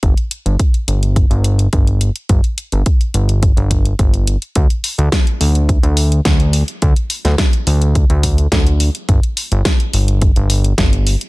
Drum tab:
HH |xxxxxxxxxxxxxxxx|xxxxxxxxxxxxxxxx|xxoxxxoxxxoxxxox|xxoxxxoxxxoxxxox|
SD |----------------|----------------|----o-------o---|---oo-------o---|
BD |o---o---o---o---|o---o---o-o-o---|o---o---o---o---|o---o---o-o-o---|

HH |xxoxxxoxxxoxxxox|
SD |----o-------o---|
BD |o---o---o---o---|